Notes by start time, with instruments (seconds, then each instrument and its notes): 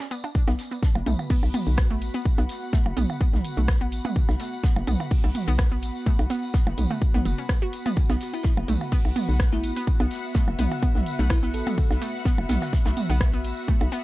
Already playing: synth texture D5
0.00 synth arpeggio sound C#4, snare, closed hi-hat, shaker
0.11 synth arpeggio sound B3, closed hi-hat, tambourine, shaker
0.24 synth arpeggio sound D4, tambourine, percussion blips
0.35 analog synth pad B3, kick, tambourine, shaker
0.48 fm bass B1, synth arpeggio sound B3, snare, percussion blips
0.58 snare, closed hi-hat, tambourine, shaker
0.66 analog synth pad B5
0.71 synth arpeggio sound B3, tambourine
0.83 kick, snare, tambourine, shaker
0.95 fm bass F#1, analog synth pad F#4, percussion blips
1.06 fm bass B1, synth arpeggio sound A3, closed hi-hat, mid tom, tambourine, shaker
1.19 tambourine, percussion blips
1.30 synth arpeggio sound B3, kick, open hi-hat, tambourine
1.36 analog synth pad F#5
1.43 fm bass B1, percussion blips
1.54 synth arpeggio sound B3, closed hi-hat, mid tom, tambourine, shaker
1.67 fm bass B1, tambourine
1.77 kick, cross-stick, snare, tambourine, shaker
1.91 synth arpeggio sound A3
2.02 fm bass A1, closed hi-hat, tambourine, shaker
2.14 synth arpeggio sound B3, tambourine
2.25 kick, tambourine, shaker
2.38 fm bass B1, synth arpeggio sound B3, closed hi-hat, percussion blips
2.48 snare, closed hi-hat, tambourine, shaker
2.62 tambourine
2.72 synth arpeggio sound A3, kick, snare, tambourine, shaker
2.86 fm bass F#1, percussion blips
2.97 fm bass B1, synth arpeggio sound B3, closed hi-hat, mid tom, tambourine, shaker
3.10 tambourine, percussion blips
3.20 synth arpeggio sound B3, kick, tambourine, shaker
3.33 fm bass B1, snare, mid tom
3.44 closed hi-hat, tambourine, shaker
3.57 fm bass B1, synth arpeggio sound A3, tambourine
3.68 kick, cross-stick, snare, tambourine, shaker
3.81 synth arpeggio sound B3
3.92 fm bass A1, closed hi-hat, tambourine, shaker
4.04 synth arpeggio sound B3, mid tom, tambourine, percussion blips
4.16 kick, tambourine, shaker
4.29 fm bass B1, snare, percussion blips
4.40 synth arpeggio sound A3, snare, closed hi-hat, tambourine, shaker
4.53 tambourine
4.63 synth arpeggio sound B3, kick, snare, tambourine, shaker
4.76 fm bass F#1, percussion blips
4.87 fm bass B1, synth arpeggio sound B3, closed hi-hat, mid tom, tambourine, shaker
5.00 tambourine, percussion blips
5.11 kick, open hi-hat, tambourine
5.24 fm bass B1, synth arpeggio sound A3, percussion blips
5.35 closed hi-hat, mid tom, tambourine, shaker
5.48 fm bass B1, synth arpeggio sound B3, tambourine
5.58 kick, cross-stick, snare, tambourine, shaker
5.72 synth arpeggio sound B3
5.83 fm bass A1, closed hi-hat, tambourine, shaker
5.95 tambourine
6.06 synth arpeggio sound A3, kick, tambourine, shaker
6.19 fm bass B1, closed hi-hat, percussion blips
6.30 synth arpeggio sound B3, snare, closed hi-hat, tambourine, shaker
6.43 tambourine
6.54 synth arpeggio sound B3, kick, snare, tambourine, shaker
6.67 fm bass F#1, percussion blips
6.78 fm bass B1, closed hi-hat, mid tom, tambourine, shaker
6.91 synth arpeggio sound A3, tambourine, percussion blips
7.02 kick, tambourine, shaker
7.14 fm bass B1, synth arpeggio sound B3, snare, mid tom
7.25 fm bass F#1, synth arpeggio sound B3, closed hi-hat, tambourine, shaker
7.38 synth arpeggio sound C#4, tambourine
7.49 kick, cross-stick, snare, tambourine, shaker
7.62 synth arpeggio sound F#4
7.73 closed hi-hat, tambourine, shaker
7.86 synth arpeggio sound B3, mid tom, tambourine, percussion blips
7.96 synth texture F#5, kick, tambourine, shaker
8.10 fm bass B1, synth arpeggio sound B3, snare, percussion blips
8.21 snare, closed hi-hat, tambourine, shaker
8.33 synth arpeggio sound B3, fm electric piano E4, tambourine
8.43 kick, snare, tambourine, shaker
8.57 fm bass F#1, percussion blips
8.68 fm bass B1, synth arpeggio sound A3, closed hi-hat, mid tom, tambourine, shaker
8.80 tambourine, percussion blips
8.92 synth arpeggio sound B3, kick, open hi-hat, tambourine
9.05 fm bass B1, percussion blips
9.16 synth arpeggio sound B3, closed hi-hat, mid tom, tambourine, shaker
9.29 fm bass B1, tambourine
9.40 kick, cross-stick, snare, tambourine, shaker
9.52 synth arpeggio sound A3, fm electric piano E4
9.63 fm bass A1, closed hi-hat, tambourine, shaker
9.70 analog synth pad E5
9.76 synth arpeggio sound B3, tambourine
9.87 kick, tambourine, shaker
10.00 fm bass B1, synth arpeggio sound B3, closed hi-hat, percussion blips
10.11 snare, closed hi-hat, tambourine, shaker
10.23 tambourine
10.35 synth arpeggio sound A3, kick, snare, tambourine, shaker
10.48 fm bass F#1, percussion blips
10.58 fm bass B1, synth arpeggio sound B3, closed hi-hat, mid tom, tambourine, shaker
10.72 tambourine, percussion blips
10.82 synth arpeggio sound B3, kick, tambourine, shaker
10.95 fm bass B1, snare, mid tom
11.06 closed hi-hat, tambourine, shaker
11.19 fm bass B1, synth arpeggio sound A3, tambourine
11.30 fm electric piano E4, kick, cross-stick, snare, tambourine, shaker
11.43 synth arpeggio sound B3, fm electric piano E4
11.54 fm bass A1, fm electric piano A4, closed hi-hat, tambourine, shaker
11.67 synth arpeggio sound B3, mid tom, tambourine, percussion blips
11.78 kick, tambourine, shaker
11.91 fm bass B1, snare, percussion blips
12.01 synth arpeggio sound A3, snare, closed hi-hat, tambourine, shaker
12.15 tambourine
12.25 synth arpeggio sound B3, kick, snare, tambourine, shaker
12.38 fm bass F#1, percussion blips
12.49 fm bass B1, synth arpeggio sound B3, snare, closed hi-hat, mid tom, tambourine, shaker
12.62 snare, tambourine, percussion blips, shaker
12.73 kick, snare, tambourine, shaker
12.85 fm bass B1, synth arpeggio sound A3, snare, percussion blips, shaker
12.97 closed hi-hat, mid tom, tambourine, shaker
13.10 fm bass B1, synth arpeggio sound B3, tambourine
13.21 kick, cross-stick, snare, shaker
13.33 synth arpeggio sound B3
13.44 fm bass A1, closed hi-hat, tambourine, shaker
13.57 tambourine
13.68 synth arpeggio sound A3, kick, tambourine, shaker
13.80 fm bass B1, closed hi-hat, percussion blips
13.92 synth arpeggio sound B3, snare, closed hi-hat, tambourine, shaker